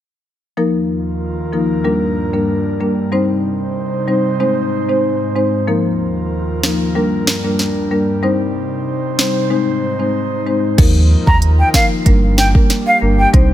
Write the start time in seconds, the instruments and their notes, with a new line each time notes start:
0.57 analog synth pad D#2 D#3 F4 A#4, marimba F3 A#3 D#4 A#4
1.53 marimba F3 A#3 D#4 A#4
1.84 analog synth pad G2 G3 D4, marimba G3 A#3 D4 A#4
2.33 marimba G3 A#3 D4 A#4
2.80 marimba G3 A#3 D4 A#4
3.12 analog synth pad C3 D#4 C5, marimba G3 C4 D#4 C5
4.08 marimba G3 C4 D#4 C5
4.40 analog synth pad G#2 G#3, marimba G#3 C4 D#4 C5
4.89 marimba G#3 C4 D#4 C5
5.36 marimba G#3 C4 D#4 C5
5.67 analog synth pad D#2 D#3 F4 A#4, marimba F3 A#3 D#4 A#4
6.63 marimba F3 A#3 D#4 A#4, snare
6.95 analog synth pad G2 G3 D4, marimba G3 A#3 D4 A#4
7.27 snare
7.44 marimba G3 A#3 D4 A#4
7.59 snare
7.91 marimba G3 A#3 D4 A#4
8.23 analog synth pad C3 D#4 C5, marimba G3 C4 D#4 C5
9.19 marimba G3 C4 D#4 C5, snare
9.50 analog synth pad G#2 G#3 D#4, marimba G#3 C4 D#4 C5
9.99 marimba G#3 C4 D#4 C5
10.46 marimba G#3 C4 D#4 C5
10.78 sub bass D#2, analog synth pad D#3 D#4 F4 A#4, marimba F3 A#3 D#4 A#4, kick, closed hi-hat, crash
11.27 sub bass D#2, flute A#5, kick
11.42 closed hi-hat
11.59 flute G5
11.74 marimba F3 A#3 D#4 A#4, flute F5, kick, snare
12.06 sub bass G1, marimba G3 A#3 D4 A#4, analog synth pad A#3 D4 G4, kick, closed hi-hat
12.38 flute G5, snare
12.55 marimba G3 A#3 D4 A#4, kick
12.70 snare, closed hi-hat
12.87 flute F5
13.01 sub bass G1, marimba G3 A#3 D4 A#4
13.19 flute G5
13.33 sub bass C2, analog synth pad C3 C4 D#4, marimba G3 C4 D#4 C5, kick, closed hi-hat